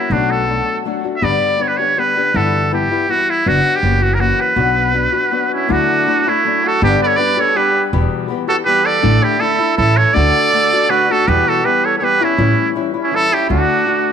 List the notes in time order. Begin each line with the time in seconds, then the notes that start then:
Already playing: A#3 C#4 E4 F#4
0.10 B1 B2 F#3 A3 D4 F#4
0.31 A4
0.48 F#3 A3 D4 F#4
0.85 F#3 A3 D4 F#4
1.04 A3 D4 F#4
1.16 E5
1.21 G1 G2 D3 G3 B3 D4 G4 D5
1.59 G3 B3 D4 G4 C#5
1.68 B4
1.77 G3 B3 D4 G4 C#5
1.97 G3 B3 D4 G4 B4
2.17 G3 B3 D4 G4
2.34 G1 G2 D3 E3 G3 B3 E4 A4
2.71 E3 G3 B3 E4 G4
2.91 E3 G3 B3 E4
3.08 E3 G3 B3 E4 F#4
3.30 E4
3.46 F#1 F#3 B3 D4 F#4
3.76 G4
3.82 F#1 E3 A#3 C#4 F#4
4.01 E3 A#3 C#4 F#4
4.14 A#4
4.18 E3 A#3 C#4 F#4
4.40 B4
4.56 B1 B2 F#3 B3 D4 F#4
4.93 F#3 B3 D4 F#4
5.12 B3 D4 F#4
5.30 F#3 B3 D4 F#4
5.51 C#4 E4
5.68 D2 D3 F#3 A3 D4 E4
5.72 F#4
6.06 F#3 A3 D4 E4
6.26 A3 D4 E4
6.44 F#3 A3 D4 E4
6.64 F#4 A4
6.81 G1 G2 D3 G3 B3 D4 G4
7.01 A4 B4 D5
7.07 C#5
7.15 G3 B3 D4 B4 D5
7.20 G4
7.37 G3 B3 D4 G4 A4 C#5
7.55 G3 B3 D4 G4 B4
7.93 E1 E2 B2 E3 G3 B3 G4
8.28 E3 G3 B3 G4
8.48 E3 G3 B3 F#4 G4 A4
8.65 E3 G3 B3 G4 B4
8.85 A4 D5
9.02 A1 A2 D3 A3 D4 E4
9.23 E4 G4
9.39 D3 A3 D4 E4 A4
9.59 A3 D4 E4
9.77 A1 E3 A3 C#4 E4 A4
9.97 A4 C#5
10.13 D2 D3 A3 D4 F#4 A4 D5
10.52 D3 A3 D4 F#4
10.73 A3 D4 F#4
10.89 D3 A3 D4 F#4 B4
11.10 A3 D4 F#4 A4
11.27 E2 B2 E3 G3 B3 E4 G4 B4
11.47 F#4 A4
11.64 E3 G3 B3 E4 G4 B4
11.85 A4 C#5
11.98 E3 G3 B3 E4 A4 C#5
12.02 G4 B4
12.20 E3 G3 B3 C#4 E4
12.38 A1 A2 E3 G3 C#4 E4
12.76 E3 G3 C#4 E4
12.94 G3 C#4 E4
13.03 C#4 E4
13.11 E3 G3 C#4 E4 A4
13.16 E4
13.32 G3 C#4 E4 G4
13.49 D2 D3 A3 D4 F#4
13.86 D3 A3 D4 F#4